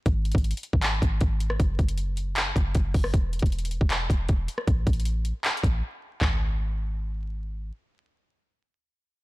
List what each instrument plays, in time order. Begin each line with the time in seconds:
0.06 808-style bass G#1, kick, closed hi-hat
0.25 closed hi-hat
0.32 808-style bass G#1, kick, closed hi-hat
0.38 closed hi-hat
0.44 closed hi-hat
0.51 closed hi-hat
0.57 closed hi-hat
0.63 closed hi-hat
0.73 808-style bass G#1, kick
0.82 clap, closed hi-hat
1.02 808-style bass G#1, kick, closed hi-hat
1.21 808-style bass G#1, kick, closed hi-hat
1.40 closed hi-hat
1.50 cross-stick
1.60 808-style bass F#1, kick, closed hi-hat
1.79 808-style bass F#1, kick, closed hi-hat
1.89 closed hi-hat
1.98 closed hi-hat
2.17 closed hi-hat
2.36 clap, closed hi-hat
2.56 808-style bass F#1, kick, closed hi-hat
2.75 808-style bass F#1, kick, closed hi-hat
2.94 808-style bass F#1, kick, open hi-hat
3.04 cross-stick
3.14 808-style bass E1, kick, closed hi-hat
3.33 closed hi-hat
3.39 808-style bass E1, kick, closed hi-hat
3.46 closed hi-hat
3.52 closed hi-hat
3.59 closed hi-hat
3.65 closed hi-hat
3.71 closed hi-hat
3.81 808-style bass E1, kick
3.90 clap, closed hi-hat
4.10 808-style bass E1, kick, closed hi-hat
4.29 808-style bass E1, kick, closed hi-hat
4.48 closed hi-hat
4.58 cross-stick
4.67 808-style bass A1, kick, closed hi-hat
4.87 808-style bass A1, kick, closed hi-hat
4.93 closed hi-hat
5.00 closed hi-hat
5.05 closed hi-hat
5.25 closed hi-hat
5.44 clap, closed hi-hat
5.51 closed hi-hat
5.57 closed hi-hat
5.64 808-style bass A1, kick, closed hi-hat
6.21 808-style bass G#1, kick, clap, floor tom